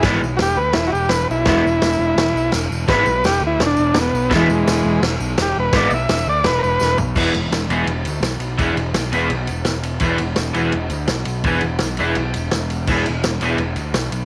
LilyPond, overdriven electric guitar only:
\new Staff \with { instrumentName = "Overdriven electric guitar" } { \time 4/4 \key e \mixolydian \tempo 4 = 168 <e gis b e'>8 r2. r8 | <e gis b e'>8 r2. r8 | <e gis b e'>8 r2. r8 | <e gis b e'>8 r2. r8 |
<e gis b e'>8 r2. r8 | <e b e' gis'>8 r4 <e b e' gis'>8 r2 | <e b e' gis'>8 r4 <e b e' gis'>8 r2 | <e b e' gis'>8 r4 <e b e' gis'>8 r2 |
<e b e' gis'>8 r4 <e b e' gis'>8 r2 | <e b e' gis'>8 r4 <e b e' gis'>8 r2 | }